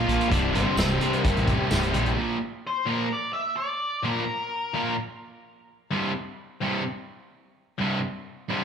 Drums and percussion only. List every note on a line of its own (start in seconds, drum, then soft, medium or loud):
0.09 closed hi-hat medium
0.21 closed hi-hat soft
0.32 kick loud
0.32 closed hi-hat loud
0.55 closed hi-hat medium
0.77 snare loud
0.77 closed hi-hat loud
0.77 tambourine loud
1.01 closed hi-hat medium
1.13 closed hi-hat medium
1.25 kick loud
1.25 closed hi-hat loud
1.37 closed hi-hat medium
1.47 kick medium
1.47 closed hi-hat medium
1.71 snare loud
1.71 closed hi-hat loud
1.71 tambourine loud
1.83 closed hi-hat medium
1.94 closed hi-hat medium
2.06 closed hi-hat soft